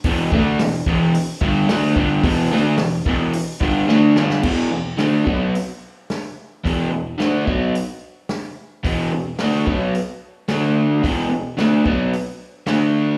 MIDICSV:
0, 0, Header, 1, 3, 480
1, 0, Start_track
1, 0, Tempo, 549451
1, 37, Time_signature, 4, 2, 24, 8
1, 11511, End_track
2, 0, Start_track
2, 0, Title_t, "Overdriven electric guitar"
2, 0, Program_c, 0, 29
2, 42, Note_on_c, 0, 40, 99
2, 49, Note_on_c, 0, 47, 105
2, 53, Note_on_c, 0, 52, 109
2, 271, Note_off_c, 0, 40, 0
2, 274, Note_off_c, 0, 47, 0
2, 276, Note_off_c, 0, 52, 0
2, 280, Note_on_c, 0, 50, 92
2, 286, Note_on_c, 0, 57, 102
2, 293, Note_on_c, 0, 62, 101
2, 510, Note_off_c, 0, 50, 0
2, 512, Note_off_c, 0, 57, 0
2, 514, Note_on_c, 0, 40, 63
2, 516, Note_off_c, 0, 62, 0
2, 516, Note_on_c, 0, 47, 77
2, 706, Note_off_c, 0, 40, 0
2, 707, Note_off_c, 0, 47, 0
2, 759, Note_on_c, 0, 40, 93
2, 767, Note_on_c, 0, 47, 106
2, 769, Note_on_c, 0, 52, 100
2, 988, Note_off_c, 0, 40, 0
2, 992, Note_off_c, 0, 47, 0
2, 993, Note_off_c, 0, 52, 0
2, 1233, Note_on_c, 0, 43, 94
2, 1235, Note_on_c, 0, 50, 113
2, 1245, Note_on_c, 0, 55, 110
2, 1457, Note_off_c, 0, 50, 0
2, 1465, Note_off_c, 0, 43, 0
2, 1468, Note_on_c, 0, 50, 104
2, 1471, Note_off_c, 0, 55, 0
2, 1474, Note_on_c, 0, 57, 97
2, 1477, Note_on_c, 0, 62, 104
2, 1702, Note_off_c, 0, 50, 0
2, 1705, Note_off_c, 0, 57, 0
2, 1707, Note_off_c, 0, 62, 0
2, 1708, Note_on_c, 0, 43, 81
2, 1717, Note_on_c, 0, 50, 101
2, 1722, Note_on_c, 0, 55, 92
2, 1941, Note_off_c, 0, 43, 0
2, 1945, Note_on_c, 0, 40, 102
2, 1947, Note_off_c, 0, 50, 0
2, 1949, Note_off_c, 0, 55, 0
2, 1959, Note_on_c, 0, 47, 93
2, 1959, Note_on_c, 0, 52, 98
2, 2180, Note_off_c, 0, 40, 0
2, 2187, Note_off_c, 0, 47, 0
2, 2187, Note_off_c, 0, 52, 0
2, 2198, Note_on_c, 0, 50, 101
2, 2205, Note_on_c, 0, 57, 96
2, 2209, Note_on_c, 0, 62, 107
2, 2427, Note_off_c, 0, 50, 0
2, 2430, Note_off_c, 0, 57, 0
2, 2432, Note_off_c, 0, 62, 0
2, 2432, Note_on_c, 0, 40, 66
2, 2437, Note_on_c, 0, 47, 72
2, 2623, Note_off_c, 0, 40, 0
2, 2626, Note_off_c, 0, 47, 0
2, 2670, Note_on_c, 0, 40, 86
2, 2677, Note_on_c, 0, 47, 92
2, 2684, Note_on_c, 0, 52, 100
2, 2903, Note_off_c, 0, 40, 0
2, 2907, Note_off_c, 0, 47, 0
2, 2910, Note_off_c, 0, 52, 0
2, 3147, Note_on_c, 0, 43, 88
2, 3157, Note_on_c, 0, 50, 107
2, 3163, Note_on_c, 0, 55, 110
2, 3378, Note_off_c, 0, 50, 0
2, 3382, Note_off_c, 0, 43, 0
2, 3388, Note_off_c, 0, 55, 0
2, 3389, Note_on_c, 0, 50, 99
2, 3391, Note_on_c, 0, 57, 101
2, 3399, Note_on_c, 0, 62, 112
2, 3623, Note_off_c, 0, 50, 0
2, 3625, Note_off_c, 0, 57, 0
2, 3628, Note_off_c, 0, 62, 0
2, 3635, Note_on_c, 0, 43, 84
2, 3641, Note_on_c, 0, 50, 96
2, 3647, Note_on_c, 0, 55, 88
2, 3866, Note_off_c, 0, 43, 0
2, 3869, Note_off_c, 0, 50, 0
2, 3869, Note_on_c, 0, 40, 91
2, 3873, Note_off_c, 0, 55, 0
2, 3873, Note_on_c, 0, 47, 100
2, 3881, Note_on_c, 0, 52, 106
2, 4102, Note_off_c, 0, 40, 0
2, 4106, Note_off_c, 0, 47, 0
2, 4111, Note_off_c, 0, 52, 0
2, 4112, Note_on_c, 0, 40, 64
2, 4116, Note_on_c, 0, 47, 64
2, 4306, Note_off_c, 0, 40, 0
2, 4308, Note_off_c, 0, 47, 0
2, 4347, Note_on_c, 0, 50, 89
2, 4356, Note_on_c, 0, 57, 93
2, 4363, Note_on_c, 0, 62, 95
2, 4584, Note_off_c, 0, 50, 0
2, 4587, Note_on_c, 0, 47, 85
2, 4589, Note_off_c, 0, 57, 0
2, 4593, Note_off_c, 0, 62, 0
2, 4597, Note_on_c, 0, 54, 92
2, 4605, Note_on_c, 0, 59, 83
2, 4825, Note_off_c, 0, 47, 0
2, 4830, Note_off_c, 0, 54, 0
2, 4834, Note_off_c, 0, 59, 0
2, 5801, Note_on_c, 0, 40, 92
2, 5808, Note_on_c, 0, 47, 95
2, 5811, Note_on_c, 0, 52, 109
2, 6020, Note_off_c, 0, 40, 0
2, 6025, Note_off_c, 0, 47, 0
2, 6031, Note_on_c, 0, 40, 65
2, 6035, Note_on_c, 0, 47, 73
2, 6040, Note_off_c, 0, 52, 0
2, 6229, Note_off_c, 0, 40, 0
2, 6232, Note_off_c, 0, 47, 0
2, 6271, Note_on_c, 0, 50, 96
2, 6283, Note_on_c, 0, 57, 95
2, 6283, Note_on_c, 0, 62, 101
2, 6510, Note_off_c, 0, 50, 0
2, 6514, Note_on_c, 0, 47, 77
2, 6517, Note_off_c, 0, 57, 0
2, 6517, Note_off_c, 0, 62, 0
2, 6526, Note_on_c, 0, 54, 85
2, 6529, Note_on_c, 0, 59, 82
2, 6753, Note_off_c, 0, 47, 0
2, 6759, Note_off_c, 0, 54, 0
2, 6760, Note_off_c, 0, 59, 0
2, 7719, Note_on_c, 0, 40, 90
2, 7720, Note_on_c, 0, 47, 98
2, 7729, Note_on_c, 0, 52, 110
2, 7956, Note_off_c, 0, 40, 0
2, 7957, Note_off_c, 0, 47, 0
2, 7961, Note_off_c, 0, 52, 0
2, 7965, Note_on_c, 0, 40, 58
2, 7968, Note_on_c, 0, 47, 72
2, 8159, Note_off_c, 0, 40, 0
2, 8160, Note_off_c, 0, 47, 0
2, 8206, Note_on_c, 0, 50, 85
2, 8211, Note_on_c, 0, 57, 84
2, 8217, Note_on_c, 0, 62, 101
2, 8435, Note_off_c, 0, 50, 0
2, 8438, Note_on_c, 0, 47, 81
2, 8442, Note_off_c, 0, 57, 0
2, 8445, Note_off_c, 0, 62, 0
2, 8446, Note_on_c, 0, 54, 98
2, 8451, Note_on_c, 0, 59, 88
2, 8676, Note_off_c, 0, 47, 0
2, 8679, Note_off_c, 0, 54, 0
2, 8682, Note_off_c, 0, 59, 0
2, 9164, Note_on_c, 0, 50, 101
2, 9164, Note_on_c, 0, 57, 102
2, 9175, Note_on_c, 0, 62, 94
2, 9628, Note_on_c, 0, 40, 95
2, 9631, Note_off_c, 0, 50, 0
2, 9634, Note_on_c, 0, 47, 91
2, 9637, Note_off_c, 0, 57, 0
2, 9641, Note_on_c, 0, 52, 99
2, 9643, Note_off_c, 0, 62, 0
2, 9854, Note_off_c, 0, 40, 0
2, 9858, Note_off_c, 0, 47, 0
2, 9864, Note_on_c, 0, 40, 61
2, 9869, Note_on_c, 0, 47, 74
2, 9875, Note_off_c, 0, 52, 0
2, 10066, Note_off_c, 0, 40, 0
2, 10068, Note_off_c, 0, 47, 0
2, 10114, Note_on_c, 0, 50, 77
2, 10122, Note_on_c, 0, 57, 93
2, 10124, Note_on_c, 0, 62, 92
2, 10344, Note_off_c, 0, 50, 0
2, 10348, Note_on_c, 0, 47, 76
2, 10355, Note_off_c, 0, 57, 0
2, 10356, Note_off_c, 0, 62, 0
2, 10358, Note_on_c, 0, 54, 82
2, 10363, Note_on_c, 0, 59, 95
2, 10587, Note_off_c, 0, 47, 0
2, 10593, Note_off_c, 0, 54, 0
2, 10595, Note_off_c, 0, 59, 0
2, 11064, Note_on_c, 0, 50, 94
2, 11071, Note_on_c, 0, 57, 94
2, 11071, Note_on_c, 0, 62, 105
2, 11511, Note_off_c, 0, 50, 0
2, 11511, Note_off_c, 0, 57, 0
2, 11511, Note_off_c, 0, 62, 0
2, 11511, End_track
3, 0, Start_track
3, 0, Title_t, "Drums"
3, 34, Note_on_c, 9, 46, 64
3, 39, Note_on_c, 9, 36, 119
3, 121, Note_off_c, 9, 46, 0
3, 126, Note_off_c, 9, 36, 0
3, 280, Note_on_c, 9, 36, 126
3, 367, Note_off_c, 9, 36, 0
3, 519, Note_on_c, 9, 38, 116
3, 519, Note_on_c, 9, 46, 59
3, 606, Note_off_c, 9, 38, 0
3, 606, Note_off_c, 9, 46, 0
3, 755, Note_on_c, 9, 36, 109
3, 843, Note_off_c, 9, 36, 0
3, 1000, Note_on_c, 9, 46, 65
3, 1087, Note_off_c, 9, 46, 0
3, 1235, Note_on_c, 9, 36, 103
3, 1323, Note_off_c, 9, 36, 0
3, 1478, Note_on_c, 9, 38, 110
3, 1478, Note_on_c, 9, 46, 57
3, 1565, Note_off_c, 9, 38, 0
3, 1565, Note_off_c, 9, 46, 0
3, 1715, Note_on_c, 9, 36, 108
3, 1802, Note_off_c, 9, 36, 0
3, 1952, Note_on_c, 9, 46, 72
3, 1953, Note_on_c, 9, 36, 114
3, 2039, Note_off_c, 9, 46, 0
3, 2040, Note_off_c, 9, 36, 0
3, 2425, Note_on_c, 9, 38, 106
3, 2425, Note_on_c, 9, 46, 60
3, 2512, Note_off_c, 9, 38, 0
3, 2512, Note_off_c, 9, 46, 0
3, 2673, Note_on_c, 9, 36, 106
3, 2760, Note_off_c, 9, 36, 0
3, 2912, Note_on_c, 9, 46, 60
3, 2999, Note_off_c, 9, 46, 0
3, 3154, Note_on_c, 9, 36, 102
3, 3241, Note_off_c, 9, 36, 0
3, 3395, Note_on_c, 9, 38, 61
3, 3483, Note_off_c, 9, 38, 0
3, 3634, Note_on_c, 9, 38, 91
3, 3721, Note_off_c, 9, 38, 0
3, 3758, Note_on_c, 9, 38, 91
3, 3845, Note_off_c, 9, 38, 0
3, 3873, Note_on_c, 9, 49, 109
3, 3877, Note_on_c, 9, 36, 107
3, 3960, Note_off_c, 9, 49, 0
3, 3964, Note_off_c, 9, 36, 0
3, 4355, Note_on_c, 9, 38, 107
3, 4355, Note_on_c, 9, 46, 52
3, 4443, Note_off_c, 9, 38, 0
3, 4443, Note_off_c, 9, 46, 0
3, 4602, Note_on_c, 9, 36, 102
3, 4689, Note_off_c, 9, 36, 0
3, 4849, Note_on_c, 9, 46, 55
3, 4936, Note_off_c, 9, 46, 0
3, 5329, Note_on_c, 9, 38, 99
3, 5329, Note_on_c, 9, 46, 54
3, 5416, Note_off_c, 9, 38, 0
3, 5416, Note_off_c, 9, 46, 0
3, 5813, Note_on_c, 9, 36, 105
3, 5821, Note_on_c, 9, 46, 60
3, 5900, Note_off_c, 9, 36, 0
3, 5908, Note_off_c, 9, 46, 0
3, 6290, Note_on_c, 9, 38, 96
3, 6290, Note_on_c, 9, 46, 47
3, 6377, Note_off_c, 9, 38, 0
3, 6377, Note_off_c, 9, 46, 0
3, 6530, Note_on_c, 9, 36, 97
3, 6617, Note_off_c, 9, 36, 0
3, 6771, Note_on_c, 9, 46, 58
3, 6858, Note_off_c, 9, 46, 0
3, 7244, Note_on_c, 9, 38, 105
3, 7244, Note_on_c, 9, 46, 53
3, 7331, Note_off_c, 9, 38, 0
3, 7331, Note_off_c, 9, 46, 0
3, 7728, Note_on_c, 9, 36, 109
3, 7732, Note_on_c, 9, 46, 58
3, 7816, Note_off_c, 9, 36, 0
3, 7819, Note_off_c, 9, 46, 0
3, 8200, Note_on_c, 9, 38, 102
3, 8200, Note_on_c, 9, 46, 54
3, 8287, Note_off_c, 9, 38, 0
3, 8287, Note_off_c, 9, 46, 0
3, 8447, Note_on_c, 9, 36, 102
3, 8535, Note_off_c, 9, 36, 0
3, 8689, Note_on_c, 9, 46, 55
3, 8777, Note_off_c, 9, 46, 0
3, 9159, Note_on_c, 9, 38, 103
3, 9159, Note_on_c, 9, 46, 54
3, 9247, Note_off_c, 9, 38, 0
3, 9247, Note_off_c, 9, 46, 0
3, 9644, Note_on_c, 9, 36, 106
3, 9648, Note_on_c, 9, 46, 58
3, 9731, Note_off_c, 9, 36, 0
3, 9735, Note_off_c, 9, 46, 0
3, 10121, Note_on_c, 9, 38, 100
3, 10121, Note_on_c, 9, 46, 48
3, 10208, Note_off_c, 9, 38, 0
3, 10208, Note_off_c, 9, 46, 0
3, 10359, Note_on_c, 9, 36, 99
3, 10446, Note_off_c, 9, 36, 0
3, 10600, Note_on_c, 9, 46, 52
3, 10687, Note_off_c, 9, 46, 0
3, 11065, Note_on_c, 9, 38, 101
3, 11065, Note_on_c, 9, 46, 51
3, 11152, Note_off_c, 9, 38, 0
3, 11152, Note_off_c, 9, 46, 0
3, 11511, End_track
0, 0, End_of_file